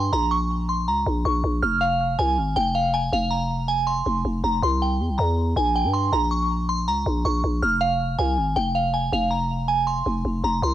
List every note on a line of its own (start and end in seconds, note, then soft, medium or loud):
0.00 0.11 G2 loud
0.13 0.89 A#1 loud
0.13 0.27 A#5 medium
0.31 0.66 C#6 medium
0.69 0.83 C6 medium
0.88 1.05 C#2 loud
0.88 1.23 A#5 medium
1.06 1.24 A#1 loud
1.25 1.43 A#1 loud
1.25 1.60 C#6 medium
1.44 1.62 A#1 loud
1.62 2.17 F1 loud
1.62 1.77 F6 medium
1.81 2.16 F5 medium
2.19 2.39 C2 loud
2.19 2.54 G#5 medium
2.38 2.55 G#1 loud
2.56 3.10 F1 loud
2.56 2.71 G5 medium
2.75 2.90 F5 medium
2.94 3.08 G#5 medium
3.13 4.03 F1 loud
3.13 3.27 F5 medium
3.31 3.66 A#5 medium
3.68 3.83 G#5 medium
3.87 4.40 C6 medium
4.06 4.24 F1 loud
4.25 4.43 F1 loud
4.44 4.62 F1 loud
4.44 4.59 A#5 medium
4.63 5.02 C2 loud
4.63 4.78 C6 medium
4.82 5.17 G5 medium
5.00 5.11 E2 loud
5.09 5.18 C2 medium
5.18 5.55 E2 loud
5.18 5.54 A#5 medium
5.56 5.86 A#1 loud
5.56 5.71 G#5 medium
5.76 5.90 G5 medium
5.84 6.11 G2 medium
5.93 6.08 C6 medium
6.12 6.89 A#1 loud
6.12 6.27 A#5 medium
6.31 6.66 C#6 medium
6.69 6.84 C6 medium
6.87 7.05 C#2 loud
6.87 7.23 A#5 medium
7.06 7.24 A#1 loud
7.25 7.43 A#1 loud
7.25 7.60 C#6 medium
7.44 7.62 A#1 loud
7.63 8.17 F1 loud
7.63 7.77 F6 medium
7.81 8.16 F5 medium
8.19 8.39 C2 loud
8.19 8.54 G#5 medium
8.37 8.55 G#1 loud
8.56 9.10 F1 loud
8.56 8.71 G5 medium
8.75 8.90 F5 medium
8.94 9.08 G#5 medium
9.13 10.03 F1 loud
9.13 9.27 F5 medium
9.31 9.66 A#5 medium
9.68 9.83 G#5 medium
9.87 10.40 C6 medium
10.06 10.24 F1 loud
10.25 10.43 F1 loud
10.44 10.62 F1 loud
10.44 10.59 A#5 medium
10.62 10.74 C2 loud
10.62 10.74 C6 medium